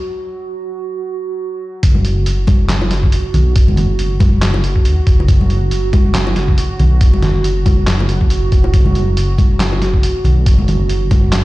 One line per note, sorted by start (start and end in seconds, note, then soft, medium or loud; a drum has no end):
0.00 1.82 F#4 medium
1.83 3.11 F#1 loud
1.83 11.44 F#4 medium
1.83 kick loud
1.83 closed hi-hat medium
1.95 high conga medium
2.05 closed hi-hat medium
2.26 closed hi-hat medium
2.47 kick loud
2.47 closed hi-hat medium
2.47 high conga medium
2.69 snare loud
2.69 clap medium
2.69 closed hi-hat medium
2.82 high bongo medium
2.91 snare medium
2.91 closed hi-hat medium
3.03 kick medium
3.12 closed hi-hat medium
3.34 3.54 B1 loud
3.34 closed hi-hat medium
3.34 low conga medium
3.56 4.87 F#1 loud
3.56 kick loud
3.56 closed hi-hat medium
3.68 high conga medium
3.77 closed hi-hat medium
3.77 low conga medium
3.99 closed hi-hat medium
4.20 kick loud
4.20 closed hi-hat medium
4.20 high bongo medium
4.20 high conga medium
4.42 snare loud
4.42 clap medium
4.42 closed hi-hat medium
4.54 high bongo medium
4.64 closed hi-hat medium
4.76 kick medium
4.85 4.96 D#2 loud
4.85 closed hi-hat medium
5.07 5.27 F#1 medium
5.07 kick loud
5.07 closed hi-hat medium
5.20 high bongo medium
5.28 6.57 F#1 loud
5.28 kick loud
5.28 closed hi-hat medium
5.41 high conga medium
5.50 closed hi-hat soft
5.71 closed hi-hat medium
5.93 kick loud
5.93 closed hi-hat soft
5.93 high conga loud
6.15 snare loud
6.15 clap loud
6.15 closed hi-hat medium
6.27 high bongo medium
6.36 snare medium
6.36 closed hi-hat medium
6.48 kick medium
6.58 closed hi-hat medium
6.79 6.99 B1 loud
6.79 closed hi-hat soft
6.79 low conga medium
7.01 8.54 F#1 loud
7.01 kick loud
7.01 closed hi-hat medium
7.14 high conga medium
7.22 snare medium
7.22 closed hi-hat medium
7.22 low conga medium
7.44 closed hi-hat medium
7.66 kick loud
7.66 closed hi-hat medium
7.66 high bongo medium
7.66 high conga loud
7.87 snare loud
7.87 clap medium
7.87 closed hi-hat medium
8.00 high bongo medium
8.09 closed hi-hat soft
8.21 kick medium
8.30 closed hi-hat medium
8.52 8.72 E1 loud
8.52 kick loud
8.52 closed hi-hat soft
8.64 high bongo medium
8.74 10.02 F#1 loud
8.74 kick loud
8.74 closed hi-hat medium
8.86 high conga medium
8.95 closed hi-hat soft
9.17 closed hi-hat medium
9.38 kick loud
9.38 closed hi-hat medium
9.38 high conga medium
9.60 snare loud
9.60 clap medium
9.60 closed hi-hat medium
9.72 high bongo medium
9.82 snare medium
9.82 closed hi-hat medium
9.94 kick medium
10.03 closed hi-hat medium
10.24 10.45 B1 loud
10.24 closed hi-hat soft
10.24 low conga medium
10.46 11.44 F#1 loud
10.46 kick loud
10.46 closed hi-hat medium
10.59 high conga medium
10.68 closed hi-hat medium
10.68 low conga medium
10.89 closed hi-hat medium
11.11 kick loud
11.11 closed hi-hat medium
11.11 high bongo medium
11.11 high conga medium
11.33 snare loud
11.33 clap medium
11.33 closed hi-hat medium